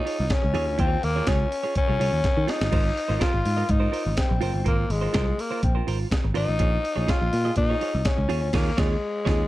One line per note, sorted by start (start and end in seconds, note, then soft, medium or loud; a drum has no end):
0.00 0.34 D#4 loud
0.05 0.25 F4 medium
0.05 0.19 G#4 medium
0.05 0.17 C#5 medium
0.05 open hi-hat medium
0.19 0.28 C2 loud
0.19 muted clean electric guitar stroke soft
0.29 0.81 C#4 loud
0.29 muted clean electric guitar stroke soft
0.29 kick loud
0.29 snare loud
0.29 closed hi-hat medium
0.42 0.55 C#2 medium
0.42 muted clean electric guitar stroke medium
0.54 0.68 D#2 loud
0.54 0.74 F4 medium
0.54 0.67 G#4 loud
0.54 0.66 C#5 loud
0.54 open hi-hat medium
0.67 0.76 D2 loud
0.67 muted clean electric guitar stroke soft
0.78 0.96 D#2 loud
0.78 1.06 C4 loud
0.78 0.99 F4 loud
0.78 0.91 G#4 medium
0.78 0.91 C#5 loud
0.78 kick loud
0.78 closed hi-hat medium
0.92 muted clean electric guitar stroke soft
1.03 1.20 D#2 medium
1.03 1.30 A#3 loud
1.03 muted clean electric guitar stroke soft
1.03 open hi-hat medium
1.16 1.26 F4 medium
1.16 1.27 G#4 medium
1.16 1.28 C#5 medium
1.27 1.44 C#2 medium
1.27 1.76 C#4 loud
1.27 1.47 F4 loud
1.27 1.40 G#4 medium
1.27 1.39 C#5 loud
1.27 kick loud
1.27 snare loud
1.27 closed hi-hat medium
1.40 muted clean electric guitar stroke soft
1.51 muted clean electric guitar stroke soft
1.51 open hi-hat medium
1.63 1.75 F4 medium
1.63 1.75 G#4 medium
1.63 1.75 C#5 medium
1.75 2.52 C#4 loud
1.75 muted clean electric guitar stroke soft
1.75 kick loud
1.75 closed hi-hat medium
1.88 1.97 C2 medium
1.88 1.98 F4 medium
1.88 1.99 G#4 medium
1.88 2.00 C#5 medium
2.00 2.09 C2 loud
2.00 2.19 F4 medium
2.00 2.13 G#4 medium
2.00 2.12 C#5 loud
2.00 open hi-hat medium
2.13 2.21 D#2 medium
2.13 muted clean electric guitar stroke soft
2.24 muted clean electric guitar stroke medium
2.24 kick loud
2.24 snare medium
2.24 closed hi-hat medium
2.37 2.45 D#3 loud
2.37 muted clean electric guitar stroke medium
2.47 3.23 D#4 loud
2.47 2.67 F4 medium
2.47 2.60 G#4 medium
2.47 2.59 C#5 medium
2.47 snare loud
2.47 open hi-hat medium
2.60 2.69 G1 medium
2.60 muted clean electric guitar stroke medium
2.60 snare loud
2.71 2.89 G#1 loud
2.71 2.91 F4 loud
2.71 2.85 A#4 loud
2.71 2.83 C5 loud
2.71 kick loud
2.71 crash medium
2.85 muted clean electric guitar stroke soft
2.96 muted clean electric guitar stroke soft
2.96 open hi-hat medium
3.08 3.17 G#1 medium
3.08 3.18 F4 medium
3.08 3.19 A#4 medium
3.08 3.20 C5 medium
3.19 3.40 F4 medium
3.19 3.72 F4 loud
3.19 3.33 A#4 medium
3.19 3.32 C5 loud
3.19 kick loud
3.19 snare loud
3.19 closed hi-hat medium
3.33 3.42 G#1 loud
3.33 muted clean electric guitar stroke medium
3.45 3.62 G#2 loud
3.45 muted clean electric guitar stroke soft
3.45 open hi-hat medium
3.57 3.67 F4 medium
3.57 3.68 A#4 medium
3.57 3.69 D#5 medium
3.69 3.86 G#2 loud
3.69 4.20 D#4 loud
3.69 muted clean electric guitar stroke soft
3.69 kick loud
3.69 closed hi-hat medium
3.80 3.90 F4 medium
3.80 3.91 A#4 medium
3.80 3.92 C5 medium
3.91 4.12 F4 medium
3.91 4.05 A#4 medium
3.91 4.04 C5 medium
3.91 open hi-hat medium
4.05 4.14 G#1 loud
4.05 muted clean electric guitar stroke medium
4.16 4.66 C4 medium
4.16 muted clean electric guitar stroke soft
4.16 kick loud
4.16 snare loud
4.16 closed hi-hat medium
4.29 4.39 A#1 loud
4.29 muted clean electric guitar stroke soft
4.41 4.50 F#1 loud
4.41 4.61 F4 loud
4.41 4.54 A#4 medium
4.41 4.53 C5 loud
4.41 open hi-hat medium
4.54 4.62 G1 loud
4.54 muted clean electric guitar stroke soft
4.64 4.83 G#1 loud
4.64 4.92 A#3 loud
4.64 4.85 F4 medium
4.64 4.77 A#4 loud
4.64 4.76 C5 loud
4.64 kick loud
4.64 closed hi-hat medium
4.77 muted clean electric guitar stroke soft
4.89 5.07 G#1 loud
4.89 5.42 G#3 loud
4.89 muted clean electric guitar stroke soft
4.89 open hi-hat medium
5.01 5.12 F4 soft
5.01 5.13 A#4 medium
5.01 5.13 C5 medium
5.13 5.31 C2 loud
5.13 5.33 F4 medium
5.13 5.27 A#4 medium
5.13 5.26 C5 loud
5.13 kick loud
5.13 snare loud
5.13 closed hi-hat medium
5.27 muted clean electric guitar stroke soft
5.38 5.64 A#3 loud
5.38 muted clean electric guitar stroke medium
5.38 open hi-hat medium
5.51 5.61 F4 medium
5.51 5.62 A#4 medium
5.51 5.63 C5 medium
5.62 5.80 A#1 loud
5.62 5.86 C4 medium
5.62 muted clean electric guitar stroke soft
5.62 kick loud
5.62 closed hi-hat medium
5.75 5.86 F4 soft
5.75 5.87 A#4 medium
5.75 5.87 C5 medium
5.87 6.04 G#1 medium
5.87 6.07 F4 medium
5.87 6.00 A#4 loud
5.87 5.99 C5 medium
5.87 open hi-hat medium
6.00 muted clean electric guitar stroke soft
6.11 muted clean electric guitar stroke soft
6.11 kick loud
6.11 snare loud
6.11 closed hi-hat medium
6.24 6.32 G#1 medium
6.24 muted clean electric guitar stroke soft
6.34 6.45 G#1 loud
6.34 7.11 D#4 loud
6.34 6.54 F4 medium
6.34 6.49 A#4 loud
6.34 6.47 C5 loud
6.34 open hi-hat medium
6.48 6.57 A1 medium
6.48 muted clean electric guitar stroke medium
6.59 6.77 A#1 loud
6.59 6.79 F4 medium
6.59 6.72 G#4 loud
6.59 6.71 C#5 loud
6.59 kick loud
6.59 closed hi-hat medium
6.82 muted clean electric guitar stroke soft
6.82 open hi-hat medium
6.96 7.05 A#1 medium
6.96 7.06 F4 medium
6.96 7.07 G#4 medium
6.96 7.07 C#5 medium
7.07 7.27 F4 medium
7.07 7.56 F4 loud
7.07 7.20 G#4 loud
7.07 7.19 C#5 medium
7.07 kick loud
7.07 snare loud
7.07 closed hi-hat medium
7.21 7.29 A#1 medium
7.21 muted clean electric guitar stroke soft
7.33 7.50 A#2 loud
7.33 muted clean electric guitar stroke soft
7.33 open hi-hat medium
7.45 7.55 F4 medium
7.45 7.56 G#4 medium
7.45 7.57 D#5 medium
7.56 7.73 A#2 loud
7.56 8.08 D#4 loud
7.56 muted clean electric guitar stroke soft
7.56 kick loud
7.56 closed hi-hat medium
7.70 7.80 F4 medium
7.70 7.81 G#4 medium
7.70 7.81 C#5 medium
7.81 8.01 F4 medium
7.81 7.94 G#4 loud
7.81 7.93 C#5 loud
7.81 open hi-hat medium
7.94 8.02 C2 loud
7.94 muted clean electric guitar stroke soft
8.05 8.56 C#4 loud
8.05 muted clean electric guitar stroke soft
8.05 kick loud
8.05 snare loud
8.05 closed hi-hat medium
8.17 8.26 C#2 loud
8.17 muted clean electric guitar stroke soft
8.29 8.42 D#2 loud
8.29 8.49 F4 loud
8.29 8.41 G#4 loud
8.29 8.40 C#5 loud
8.29 open hi-hat medium
8.41 8.50 D2 loud
8.41 muted clean electric guitar stroke medium
8.53 8.70 D#2 loud
8.53 8.80 A#3 loud
8.53 8.70 F4 loud
8.53 8.70 G#4 loud
8.53 8.71 C#5 loud
8.53 kick loud
8.53 snare loud
8.53 crash medium
8.77 8.95 D#2 loud
8.77 9.48 G#3 loud
8.77 8.95 F4 medium
8.77 8.94 G#4 loud
8.77 8.94 C#5 loud
8.77 kick loud
8.77 snare loud
9.25 9.43 D#2 loud
9.25 9.43 F4 loud
9.25 9.43 G#4 loud
9.25 9.42 C#5 medium
9.25 kick loud
9.25 snare loud